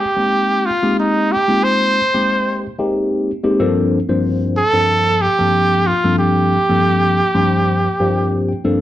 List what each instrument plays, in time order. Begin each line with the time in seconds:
0.00 trumpet G4
0.16 tine electric piano G#3 A#3 C4 D#4 G4
0.66 trumpet F4
0.82 tine electric piano G#3 A#3 C4 D#4 G4
1.00 trumpet D#4
1.32 trumpet G4
1.48 tine electric piano G#3 A#3 C4 D#4 F4
1.64 trumpet C5
2.14 tine electric piano G#3 A#3 C4 D#4 G4
2.78 tine electric piano G#3 A#3 C4 D#4 G4
3.43 tine electric piano G#3 A#3 C4 D#4 G4
3.59 tine electric piano G2 F3 A#3 C4 D4 A4
4.09 tine electric piano G2 F3 A#3 C4 D4 C5
4.57 trumpet A4
4.73 tine electric piano G2 F3 A#3 C4 D4 A4
5.22 trumpet G4
5.39 tine electric piano G2 F3 A#3 C4 D4 A4
5.87 trumpet F4
6.04 tine electric piano G2 F3 A#3 C4 D4 A4
6.19 trumpet G4
6.69 tine electric piano G2 F3 A#3 C4 D4 A4
7.34 tine electric piano G2 F3 A#3 C4 D4 C5
8.00 tine electric piano G2 F3 A#3 C4 D4 G4
8.49 tine electric piano G5
8.65 tine electric piano G2 F3 A#3 C4 D4 A4 F5